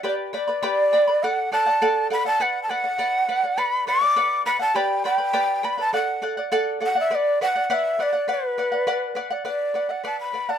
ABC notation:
X:1
M:2/4
L:1/16
Q:1/4=102
K:Bm
V:1 name="Quena"
d2 d6 | f2 a4 b a | f3/2 a/2 f6 | b2 d'4 b a |
g2 g4 b a | f2 z4 f e | d2 f3/2 f/2 e2 d2 | B6 z2 |
d3 f a b2 a |]
V:2 name="Charango"
[GBdgb]2 [Bdgb] [Bdb] [GBdgb]2 [Bdgb] [Bdb] | [Adf]2 [Adf] [df] [Adf]2 [Adf] [df] | [Bdf]2 [Bdf] [df] [Bdf]2 [Bdf] [df] | [Bdf]2 [Bdf] [df] [Bdf]2 [Bdf] [df] |
[GBdgb]2 [Bdgb] [Bdb] [GBdgb]2 [Bdgb] [Bdb] | [Adf]2 [Adf] [df] [Adf]2 [Adf] [df] | [Bdf]2 [Bdf] [df] [Bdf]2 [Bdf] [df] | [Bdf]2 [Bdf] [df] [Bdf]2 [Bdf] [df] |
[Bdf]2 [Bdf] [df] [Bdf]2 [Bdf] [df] |]